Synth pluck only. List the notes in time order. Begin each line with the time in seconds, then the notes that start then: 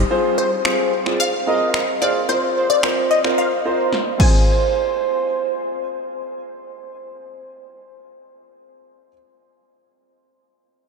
0.38 C5
1.20 F5
2.02 D5
2.29 C5
2.70 D5
3.11 D#5
3.38 F5
4.20 G#5